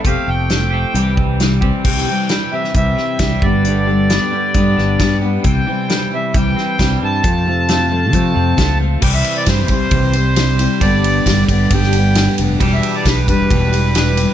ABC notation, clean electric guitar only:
X:1
M:4/4
L:1/8
Q:1/4=134
K:C
V:1 name="Clean electric guitar" clef=bass
[F,A,CG]3 [F,A,CG] [C,E,G,CG]3 [C,E,G,CG] | C, E, G, E, G, C G, G,, | G,, D, B, G, B, D B, G, | C, E, G, E, G, C G, E, |
F,, C, A, F, A, C A, F, | [C,E,G,CG]8 | [G,,D,G,B,DG]8 | [E,,B,,E,G,DG]8 |]